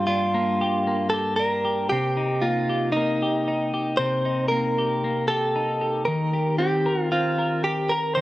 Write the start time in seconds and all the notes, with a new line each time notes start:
Already playing: G2 A#3 G4
0.07 D4 F4
0.34 A#3
0.61 G4
0.87 A#3
1.10 G4 A4
1.36 D4 A#4
1.65 G4
1.89 C3 G4
2.17 D#4
2.42 A#3 F4
2.70 G4
2.92 D#4
2.96 A#3
3.22 G4
3.48 D#4
3.74 G4
3.97 C3 C5
4.25 D#4
4.49 A#3 A#4
4.79 G4
5.04 A#3
5.28 G4 A4
5.56 D#4
5.81 G4
6.05 D#3 A#4
6.33 G4
6.58 C4 G4
6.86 A#4
7.12 C4 F4
7.38 A#4
7.64 G4
7.89 A#4
8.15 D#3 C5